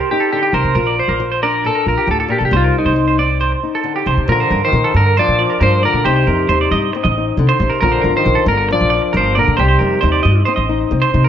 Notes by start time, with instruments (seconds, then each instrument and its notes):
Already playing: nylon-string guitar G2 C4 G4
0.00 clean electric guitar A#4
0.11 nylon-string guitar D#4, clean electric guitar G4
0.20 clean electric guitar A4
0.32 nylon-string guitar D3, clean electric guitar G4
0.43 clean electric guitar G4
0.53 upright bass C2, nylon-string guitar C3, clean electric guitar A#4 C5
0.64 upright bass C3
0.75 upright bass A#1, nylon-string guitar A#2 F4, clean electric guitar A#4
0.87 clean electric guitar D5
0.99 clean electric guitar C5
1.08 upright bass A#1, clean electric guitar A#4
1.20 nylon-string guitar F3
1.32 clean electric guitar C5
1.43 nylon-string guitar D4, clean electric guitar A#4 D5
1.64 nylon-string guitar A#2, clean electric guitar A4 A#4
1.75 clean electric guitar A#4
1.86 upright bass A#1, nylon-string guitar F4, clean electric guitar A#4
1.98 clean electric guitar G4
2.07 upright bass D2, nylon-string guitar A2, clean electric guitar A4
2.20 clean electric guitar A4
2.28 nylon-string guitar A#2, clean electric guitar G4 A#4
2.38 upright bass B1, clean electric guitar A4
2.45 clean electric guitar G4
2.51 upright bass C2, nylon-string guitar C3 G3 C4 D#4, clean electric guitar C5
2.57 clean electric guitar F4
2.64 clean electric guitar A#4
2.78 clean electric guitar D#4
2.85 upright bass C2, clean electric guitar C5
2.96 nylon-string guitar G3
3.08 clean electric guitar C5
3.19 nylon-string guitar C4, clean electric guitar D5
3.40 nylon-string guitar G2, clean electric guitar C5
3.52 muted clean electric guitar stroke
3.63 nylon-string guitar D#4
3.75 clean electric guitar A4
3.84 nylon-string guitar D3
3.96 clean electric guitar G4
4.06 upright bass C2, nylon-string guitar C3, clean electric guitar C5
4.17 upright bass C3
4.28 nylon-string guitar A#2 F3 F4, upright bass A#2, trombone D3, clean electric guitar A#4, muted nylon-string guitar stroke
4.32 clean electric guitar A#4
4.40 clean electric guitar C5
4.50 upright bass G2, nylon-string guitar F4, clean electric guitar A#4
4.64 trombone D#3, clean electric guitar C5
4.72 upright bass A#2, nylon-string guitar F3 A#4
4.84 clean electric guitar A4
4.94 upright bass G2, trombone D3, clean electric guitar A#4
5.06 clean electric guitar A#4
5.17 nylon-string guitar A#2 D4, trombone F3, clean electric guitar C5 D5
5.28 upright bass A#2
5.39 nylon-string guitar F4, clean electric guitar D5
5.50 clean electric guitar A#4
5.60 upright bass G2, nylon-string guitar F3 D4, trombone F3, clean electric guitar A#4 C5
5.83 trombone D3, nylon-string guitar F4, clean electric guitar A#4 D5
5.94 upright bass A#2
6.05 upright bass C2, nylon-string guitar C3 D#4, trombone C3, clean electric guitar G4 C5
6.16 clean electric guitar C5
6.27 upright bass F2, nylon-string guitar D#4, clean electric guitar A#4
6.49 upright bass D#2, nylon-string guitar G3 D#4, clean electric guitar C5
6.61 clean electric guitar D5
6.71 upright bass G2, clean electric guitar D#5
6.93 nylon-string guitar G2 C4, muted clean electric guitar stroke
7.04 upright bass A1, clean electric guitar D#5
7.18 nylon-string guitar D#4
7.37 upright bass C3, nylon-string guitar D3
7.49 clean electric guitar C5
7.60 upright bass A1, nylon-string guitar C3
7.70 clean electric guitar A#4
7.81 upright bass A#1, nylon-string guitar A#2 F3 D4 F4, trombone D3, clean electric guitar A#4
7.92 clean electric guitar C5
8.01 upright bass G1, nylon-string guitar F4, clean electric guitar A#4
8.16 trombone D#3, clean electric guitar C5
8.26 upright bass A#1, nylon-string guitar F3 A#4
8.35 clean electric guitar A4
8.46 upright bass G1, trombone D3, clean electric guitar A#4
8.57 clean electric guitar A#4
8.69 nylon-string guitar A#2 D4, trombone F3, clean electric guitar D5, muted clean electric guitar stroke
8.81 upright bass A#1
8.90 nylon-string guitar F4, clean electric guitar D5
9.02 muted clean electric guitar stroke
9.13 upright bass G1, clean electric guitar A#4 C5
9.17 trombone F3
9.35 nylon-string guitar A#2, trombone D3, clean electric guitar A#4 D5
9.48 upright bass A#2
9.57 upright bass C2, nylon-string guitar C3 G3, clean electric guitar G4 C5, muted nylon-string guitar stroke
9.61 trombone C3, nylon-string guitar D#4
9.68 clean electric guitar C5
9.79 upright bass F2, nylon-string guitar D#4, clean electric guitar A#4
10.01 upright bass D#2, nylon-string guitar G3 D#4, clean electric guitar C5
10.12 clean electric guitar D5
10.23 upright bass G2, clean electric guitar D#5
10.45 nylon-string guitar G2 C4, clean electric guitar C5
10.56 upright bass A1, clean electric guitar D#5
10.69 nylon-string guitar D#4
10.91 upright bass C3, nylon-string guitar G3 C4
11.02 clean electric guitar C5
11.14 upright bass C3, nylon-string guitar D#4
11.24 clean electric guitar A#4